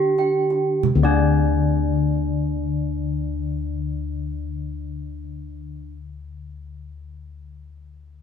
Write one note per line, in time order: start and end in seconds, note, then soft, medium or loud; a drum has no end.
0.00 2.15 D3 medium
0.00 0.83 D4 medium
0.00 0.84 G4 medium
0.00 0.14 G5 medium
0.00 0.27 G5 medium
0.18 0.80 G5 medium
0.18 kendang slap soft
0.50 kendang slap soft
0.83 kendang low medium
0.95 5.82 D2 loud
1.03 5.90 D3 medium
1.03 5.91 D4 medium
1.03 5.90 D5 medium